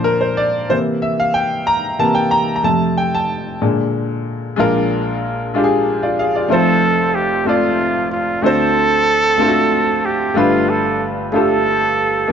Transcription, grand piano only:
Already playing: A#2 D3 F3 A#4 C5 D5
0.04 A#4
0.21 C5
0.37 D5
0.69 C3 E3 A#3 C5
1.02 E5
1.20 F5
1.34 G5
1.67 A#5
1.99 C3 E3 A#3 A5
2.15 G5
2.31 A#5
2.56 A#5
2.63 F2 C3 A3 A5
2.98 G5
3.15 A5
3.62 A#2 D3 G#3
4.56 A#1 A#2 G#3 D4 F4 A#4
5.54 G#3 D4 F4 G4
5.64 G#4
6.03 F4 D5
6.19 G#4 F5
6.35 F4 D5
6.48 F1 F2 A3 C4 E4 F4 C5
7.45 A3 C4 F4 D5 E5
8.42 D2 D3 A3 C4 D4 F#4 C5
9.38 A3 C4 D4 F4
9.42 A4
9.48 F#4
10.34 G1 G2 A3 D4 F4 G4 B4
11.32 A3 D4 F4 G4 A4
12.28 A#3

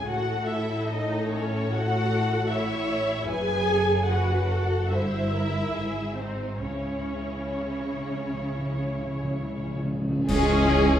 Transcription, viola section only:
0.07 F#4
0.48 E4
0.87 D#4
1.31 C#4
1.73 F#4
2.52 E4
3.30 G#4
4.10 F#4
4.92 E4
6.17 C4
6.62 C#4
10.30 C#4

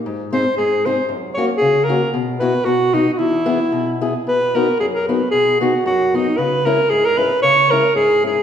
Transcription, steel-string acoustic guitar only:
0.06 G#2
0.33 C4 D#4 G#4
0.58 G#2
0.86 C4 D#4 G#4
1.09 F#2
1.37 A#3 C#4 F#4
1.62 C#3
1.89 A#3 C#4 F#4
2.14 B2
2.41 B3 E4 F#4
2.66 B2
2.94 B3 D#4 F#4
3.19 E2
3.46 B3 E4 G#4
3.72 B2
4.01 B3 E4 G#4
4.27 B2
4.55 B3 D#4 F#4
4.81 F#2
5.09 B3 D#4 F#4
5.33 B2
5.61 B3 D#4 F#4
5.86 F#2
6.14 B3 D#4 F#4
6.38 C#3
6.66 G#3 C#4 E4
6.91 G#2
7.17 G#3 C#4 E4
7.43 C#3
7.71 G#3 C#4 E4
7.95 G#2
8.23 G#3 C#4 E4

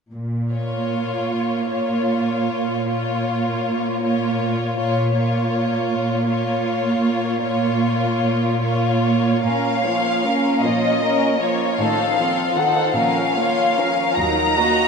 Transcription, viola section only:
0.54 A#3
1.71 A#3
2.88 A#3
4.04 A#3
4.79 A#3
5.16 A#3
6.29 A#3
7.43 A#3
8.63 A#3
9.44 A#3 C#4
9.83 F3 A#3
10.24 A#3 C#4
10.63 F3 A#3
11.03 A#3 C#4
11.42 F3 A#3
11.80 D#3 D#4
12.19 F3 C4
12.57 D#3 D#4
12.97 F3 C#4
13.36 A#3
13.77 F3 C#4
14.18 F#3 D#4
14.56 A#3 F#4

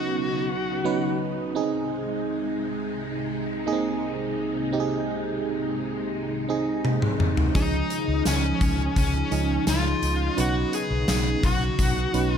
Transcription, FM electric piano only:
Already playing: F#3 B3 C#4 D#4 B4
0.84 F#3 B3 C#4 D#4 B4
1.55 C4 D#4 G#4
3.66 A#3 D#4 G#4
3.73 C4
4.72 C4 D#4 G4
4.80 G#4
6.49 C4 D#4 G#4
7.54 F3 G#3 C#4 D#4 G#4
9.31 F3 G#3 C#4 D#4 G#4
10.37 F#3 B3 C#4 D#4 B4
12.13 F#3 B3 C#4 D#4 B4

